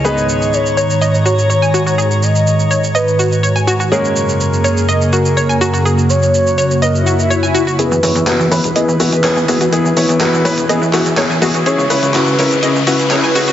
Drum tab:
HH |----------------|----------------|----------------|----------------|
SH |xxxxxxxxxxxxxxxx|xxxxxxxxxxxxxxxx|xxxxxxxxxxxxxxxx|xxxxxxxxxxxxxxxx|
CP |----------------|----------------|----------------|----------------|

HH |x-oxx-oxx-oxx-ox|x-oxx-oxx-oxx-ox|x-oxx-oxx-oxx-ox|
SH |xxxxxxxxxxxxxxxx|xxxxxxxxxxxxxxxx|xxxxxxxxxxxxxxxx|
CP |----x-------x---|----x-----x-x---|----x-------x---|